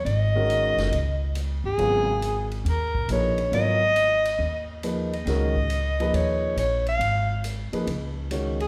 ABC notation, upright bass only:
X:1
M:4/4
L:1/8
Q:"Swing" 1/4=138
K:G#dor
V:1 name="Upright bass" clef=bass
G,,,3 F,,, C,,3 =G,,, | G,,,4 D,,2 A,,,2 | G,,,4 D,,4 | C,,4 D,,2 A,,,2 |
G,,,3 z C,,4 |]